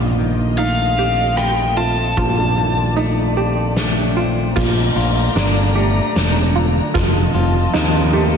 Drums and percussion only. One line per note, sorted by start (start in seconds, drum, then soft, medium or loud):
0.58 closed hi-hat soft
1.37 cross-stick medium
1.37 closed hi-hat soft
2.17 kick medium
2.17 closed hi-hat soft
2.97 closed hi-hat soft
3.77 snare medium
3.77 closed hi-hat soft
4.57 kick medium
4.57 snare soft
4.57 crash medium
5.37 snare medium
5.37 closed hi-hat medium
6.16 snare medium
6.16 closed hi-hat medium
6.95 kick medium
6.95 snare medium
6.95 closed hi-hat medium
7.74 snare medium
7.74 closed hi-hat medium